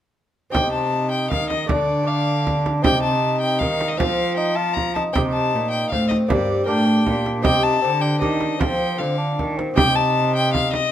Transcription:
0.50 1.27 C3 soft
0.50 1.34 C3 medium
0.50 1.64 C4 soft
0.50 1.65 D#4 soft
0.50 1.70 D#4 medium
0.50 1.65 G4 soft
0.50 0.71 G5 medium
0.54 frame drum medium
0.73 1.10 A5 medium
1.11 1.30 G5 medium
1.30 1.65 D#3 soft
1.30 1.70 D#3 soft
1.30 1.49 F5 medium
1.30 frame drum soft
1.50 1.69 D#5 medium
1.50 frame drum soft
1.66 2.80 D3 soft
1.66 2.02 A3 soft
1.66 2.04 D4 soft
1.66 2.06 D4 medium
1.66 2.09 D5 medium
1.66 frame drum medium
1.71 2.87 D3 medium
2.03 2.79 A3 soft
2.03 2.80 D4 soft
2.03 2.84 D4 medium
2.07 2.65 F5 medium
2.47 frame drum soft
2.66 frame drum soft
2.82 3.63 C3 medium
2.82 3.57 C3 medium
2.82 3.95 C4 soft
2.82 4.00 D#4 medium
2.82 3.95 D#4 soft
2.82 3.96 G4 soft
2.82 3.02 G5 loud
2.82 frame drum medium
3.03 3.40 A5 medium
3.41 3.60 G5 medium
3.59 3.99 D#3 medium
3.59 3.96 D#3 medium
3.59 3.89 F5 medium
3.59 frame drum soft
3.81 frame drum soft
3.88 3.99 D#5 medium
3.97 4.94 F3 medium
3.97 4.93 F3 soft
3.97 5.11 C4 soft
3.97 4.34 C4 medium
3.97 5.11 F4 soft
3.97 5.12 A4 soft
3.97 4.36 F5 medium
3.97 frame drum medium
4.37 4.58 D#4 medium
4.37 4.57 G5 medium
4.55 4.95 F4 medium
4.55 4.75 A5 medium
4.73 4.94 A#5 medium
4.73 frame drum soft
4.95 5.15 D#4 soft
4.95 5.03 A5 medium
4.95 frame drum soft
5.13 5.56 C3 medium
5.13 5.51 C3 soft
5.13 6.26 C4 soft
5.13 6.27 D#4 soft
5.13 5.94 D#4 medium
5.13 6.27 G4 soft
5.13 5.21 G5 medium
5.13 frame drum medium
5.32 5.70 A5 medium
5.55 5.91 A#2 medium
5.55 5.89 A#2 soft
5.71 5.90 G5 medium
5.90 6.29 A2 medium
5.90 6.27 A2 soft
5.90 6.70 C4 medium
5.90 6.08 F5 medium
5.90 frame drum soft
6.08 6.16 D#5 medium
6.08 frame drum soft
6.28 6.68 G2 medium
6.28 6.66 A#3 soft
6.28 6.66 D4 soft
6.28 6.65 G4 soft
6.28 6.66 D5 medium
6.28 frame drum medium
6.32 6.66 G2 medium
6.66 7.06 A2 medium
6.66 7.03 A2 medium
6.66 7.42 D4 soft
6.66 6.86 D4 medium
6.66 7.42 G4 soft
6.66 7.41 A#4 soft
6.66 7.24 G5 medium
6.86 7.43 D4 medium
7.06 7.47 A#2 medium
7.06 7.42 A#2 medium
7.06 frame drum medium
7.26 frame drum soft
7.42 7.84 C3 medium
7.42 8.18 C4 medium
7.42 7.81 D#4 medium
7.42 8.19 G4 medium
7.42 8.19 D#5 soft
7.42 7.64 G5 loud
7.42 frame drum medium
7.46 7.80 C3 medium
7.63 8.03 A5 medium
7.82 8.18 D3 soft
7.82 8.21 D3 medium
7.82 7.91 C4 medium
8.01 8.62 D4 medium
8.01 8.20 G5 medium
8.19 8.57 D#3 soft
8.19 8.60 D#3 medium
8.19 8.57 C4 soft
8.19 8.59 D#4 soft
8.19 8.59 G4 soft
8.19 8.61 D#5 medium
8.19 frame drum soft
8.41 frame drum soft
8.58 9.01 F3 medium
8.58 8.96 F3 soft
8.58 8.95 C4 soft
8.58 8.96 C4 soft
8.58 8.96 F4 soft
8.58 8.97 A4 soft
8.58 8.99 G5 medium
8.58 frame drum medium
8.96 9.35 D3 soft
8.96 9.39 D3 medium
8.96 9.36 C4 soft
8.96 9.17 C4 medium
8.96 9.74 F4 soft
8.96 9.75 A4 soft
8.96 9.38 F5 medium
9.18 9.59 D4 medium
9.39 9.74 D#3 soft
9.39 9.77 D#3 soft
9.39 frame drum soft
9.57 9.77 C4 soft
9.57 frame drum soft
9.74 10.89 C3 medium
9.74 10.92 C3 medium
9.74 10.88 C4 soft
9.74 10.88 D#4 medium
9.74 10.89 D#4 medium
9.74 10.89 G4 medium
9.74 9.97 G5 loud
9.74 frame drum medium
9.96 10.35 A5 medium
10.36 10.53 G5 medium
10.54 10.72 F5 medium
10.54 frame drum medium
10.73 10.92 D#5 medium
10.73 frame drum soft

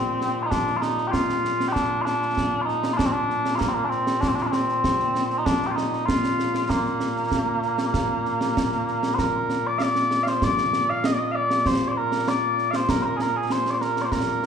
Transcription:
0.00 14.46 A#2 medium
0.00 0.43 C4 loud
0.21 snare medium
0.43 0.50 D#4 medium
0.43 0.46 F4 medium
0.50 0.77 D4 loud
0.50 concert bass drum medium
0.50 snare medium
0.67 snare soft
0.77 0.81 F4 medium
0.81 1.07 D#4 medium
0.81 snare medium
0.98 snare soft
1.07 1.68 F4 medium
1.07 1.11 G4 medium
1.13 concert bass drum soft
1.13 snare medium
1.30 snare medium
1.45 snare medium
1.60 snare medium
1.68 1.72 G4 loud
1.72 2.02 D4 loud
1.72 concert bass drum soft
1.72 snare medium
2.02 2.62 D4 medium
2.02 2.05 F4 medium
2.06 snare medium
2.22 snare soft
2.37 concert bass drum soft
2.37 snare medium
2.62 2.93 D#4 loud
2.62 2.66 F4 medium
2.68 snare soft
2.84 snare medium
2.93 3.06 D4 medium
2.93 2.97 F4 medium
2.99 concert bass drum medium
2.99 snare loud
3.06 3.12 C4 medium
3.12 3.55 D4 loud
3.30 snare soft
3.45 snare medium
3.55 3.68 A#3 medium
3.55 3.59 F4 medium
3.61 concert bass drum medium
3.61 snare loud
3.68 3.74 C4 medium
3.74 3.85 A#3 loud
3.85 3.90 D4 medium
3.90 4.21 C4 medium
3.90 snare soft
4.07 snare medium
4.21 4.28 D4 medium
4.21 concert bass drum medium
4.21 snare loud
4.28 4.35 C4 medium
4.35 4.42 D4 medium
4.35 snare soft
4.42 4.46 F4 medium
4.46 4.52 D4 medium
4.52 5.38 C4 medium
4.52 snare medium
4.69 snare soft
4.84 concert bass drum medium
4.84 snare medium
5.00 snare soft
5.15 snare medium
5.30 snare soft
5.38 5.45 D#4 medium
5.45 5.67 D4 loud
5.45 concert bass drum medium
5.45 snare loud
5.62 snare soft
5.67 5.71 G4 medium
5.71 5.76 F4 medium
5.76 6.06 D#4 medium
5.76 snare medium
5.93 snare soft
6.06 6.70 F4 loud
6.06 concert bass drum medium
6.06 snare loud
6.24 snare medium
6.39 snare medium
6.55 snare medium
6.70 9.15 A#3 medium
6.70 concert bass drum soft
6.70 snare medium
6.85 snare soft
7.00 snare medium
7.16 snare soft
7.31 concert bass drum medium
7.31 snare medium
7.62 snare soft
7.78 snare medium
7.94 concert bass drum medium
7.94 snare loud
8.26 snare soft
8.41 snare medium
8.57 concert bass drum medium
8.57 snare loud
8.72 snare soft
8.88 snare soft
9.03 snare medium
9.15 9.19 C5 medium
9.15 concert bass drum medium
9.15 snare medium
9.19 9.67 A#4 medium
9.50 snare medium
9.67 9.78 D5 medium
9.78 10.23 D5 medium
9.78 9.82 F5 medium
9.78 snare medium
9.96 snare medium
10.11 snare medium
10.23 10.28 F5 medium
10.23 snare medium
10.28 10.44 C5 medium
10.42 10.90 D5 loud
10.42 concert bass drum medium
10.42 snare medium
10.58 snare medium
10.73 snare medium
10.90 11.05 F5 medium
11.04 11.13 D#5 medium
11.04 snare loud
11.13 11.18 D5 medium
11.18 11.31 D#5 medium
11.31 11.66 D5 medium
11.31 11.35 F5 medium
11.51 snare medium
11.66 11.88 C5 loud
11.66 concert bass drum medium
11.66 snare medium
11.88 11.97 C5 medium
11.88 11.91 D5 medium
11.97 12.28 A#4 loud
12.12 snare medium
12.28 12.71 D5 medium
12.28 snare loud
12.58 snare soft
12.71 12.75 F5 medium
12.71 snare medium
12.75 12.90 C5 medium
12.89 13.02 A#4 loud
12.89 concert bass drum medium
12.89 snare loud
13.02 13.17 A#4 loud
13.02 13.05 C5 medium
13.17 13.21 G#4 medium
13.17 snare medium
13.21 13.36 A#4 loud
13.36 13.52 G#4 medium
13.50 13.70 C5 medium
13.50 snare medium
13.66 snare medium
13.70 13.82 C5 medium
13.70 13.74 D5 medium
13.81 14.02 A#4 loud
13.81 snare medium
13.97 snare medium
14.02 14.12 C5 medium
14.02 14.05 D5 medium
14.12 14.46 A#4 medium
14.12 concert bass drum soft
14.12 snare medium

